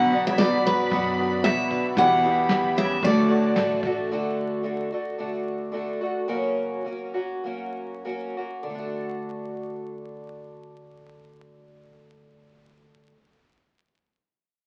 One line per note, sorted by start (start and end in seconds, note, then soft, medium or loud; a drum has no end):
0.00 0.87 B1 loud
0.00 0.12 B2 medium
0.00 0.22 D3 loud
0.00 0.13 F#3 medium
0.00 1.97 F#3 medium
0.00 0.13 B3 medium
0.00 0.12 D4 medium
0.00 0.11 F#4 medium
0.00 1.94 F#4 medium
0.00 1.95 D5 medium
0.00 0.26 F#5 loud
0.00 1.94 B5 loud
0.11 0.63 B3 medium
0.11 0.39 B3 soft
0.11 1.16 D4 medium
0.11 0.39 D4 medium
0.11 1.17 F#4 medium
0.11 0.39 F#4 medium
0.11 ride medium
0.26 0.38 C#3 medium
0.26 0.40 E5 medium
0.38 0.64 B2 medium
0.38 0.91 F#3 medium
0.38 0.92 B3 medium
0.38 0.92 D4 medium
0.38 0.93 F#4 medium
0.38 0.63 D5 loud
0.38 snare loud
0.38 ride medium
0.64 1.40 F#2 medium
0.64 0.89 B3 medium
0.64 1.41 B4 medium
0.64 ride medium
0.91 1.42 F#2 loud
0.91 1.45 B2 medium
0.91 1.45 F#3 medium
0.91 1.15 B3 medium
0.91 1.45 B3 medium
0.91 1.45 D4 medium
0.91 1.45 F#4 medium
0.91 kick medium
0.91 ride medium
1.17 2.02 B3 medium
1.17 1.69 D4 medium
1.17 1.97 F#4 medium
1.17 ride medium
1.44 1.94 B1 medium
1.44 1.93 B2 medium
1.44 1.98 F#3 medium
1.44 1.98 B3 medium
1.44 1.98 E5 loud
1.44 snare medium
1.44 ride medium
1.48 1.99 D4 medium
1.48 1.99 F#4 medium
1.70 2.02 D4 medium
1.70 kick medium
1.70 ride medium
1.96 2.99 E2 loud
1.96 2.24 E2 medium
1.96 2.72 B2 loud
1.96 2.25 B2 medium
1.96 3.08 E3 loud
1.96 2.25 E3 medium
1.96 2.25 G3 medium
1.96 2.25 B3 loud
1.96 3.02 G4 medium
1.96 2.23 G4 medium
1.96 3.02 E5 medium
1.96 2.77 F#5 loud
1.96 3.01 B5 loud
1.96 kick loud
1.96 ride medium
2.01 2.24 G4 loud
2.23 2.51 G3 soft
2.23 2.75 B3 medium
2.23 3.08 E4 medium
2.23 3.09 G4 medium
2.23 2.51 G4 medium
2.23 ride medium
2.27 2.52 E3 soft
2.27 2.52 B3 medium
2.49 3.04 E3 medium
2.49 snare loud
2.49 ride medium
2.53 3.04 G3 medium
2.53 3.05 B3 medium
2.53 3.05 G4 medium
2.76 3.01 C#3 medium
2.76 3.03 B3 medium
2.76 3.04 E5 loud
2.76 ride medium
3.02 3.53 D2 loud
3.02 3.79 A2 medium
3.02 3.57 D3 medium
3.02 3.28 A3 medium
3.02 4.08 F#4 medium
3.02 4.08 D5 medium
3.02 3.79 D5 medium
3.02 4.08 A5 medium
3.02 kick medium
3.02 ride medium
3.06 3.58 A3 medium
3.06 3.58 D4 medium
3.06 3.58 F#4 medium
3.29 4.14 A3 medium
3.29 3.81 D4 medium
3.29 4.15 F#4 medium
3.29 ride medium
3.56 4.06 A1 medium
3.56 3.84 D3 medium
3.56 3.84 A3 medium
3.56 snare medium
3.56 ride medium
3.60 3.85 D4 medium
3.60 3.85 F#4 medium
3.82 4.14 D4 medium
3.82 4.11 F#4 medium
3.82 kick medium
3.82 ride medium
3.87 4.11 A3 soft
3.87 4.11 D4 medium
4.11 4.62 D3 medium
4.11 4.63 A3 medium
4.11 4.63 D4 medium
4.11 4.65 F#4 medium
4.63 4.89 D3 soft
4.63 4.90 A3 medium
4.63 4.90 D4 medium
4.63 4.90 F#4 medium
4.92 5.18 A3 soft
4.92 5.18 D4 soft
4.92 5.17 F#4 medium
5.18 5.70 D3 medium
5.18 5.72 A3 medium
5.18 5.72 D4 medium
5.18 5.74 F#4 medium
5.72 5.99 D3 medium
5.72 5.99 A3 medium
5.72 6.00 D4 medium
5.72 6.00 F#4 medium
6.01 6.28 A3 soft
6.01 6.28 D4 medium
6.01 6.28 F#4 soft
6.28 6.84 C#3 medium
6.28 6.83 F#3 medium
6.28 6.84 A#3 medium
6.28 6.85 C#4 medium
6.28 6.85 F#4 medium
6.84 7.13 F#3 soft
6.84 7.14 A#3 soft
6.84 7.14 C#4 medium
6.84 7.13 F#4 medium
7.14 7.44 A#3 soft
7.14 7.43 C#4 soft
7.14 7.43 F#4 medium
7.44 8.03 F#3 medium
7.44 8.04 A#3 medium
7.44 8.05 C#4 medium
7.44 8.05 F#4 medium
8.05 8.35 F#3 medium
8.05 8.35 A#3 medium
8.05 8.36 C#4 medium
8.05 8.36 F#4 medium
8.37 8.68 A#3 soft
8.37 8.68 C#4 soft
8.37 8.67 F#4 soft
8.63 13.11 D3 medium
8.69 13.18 A3 medium
8.75 13.23 D4 medium
8.79 13.28 F#4 medium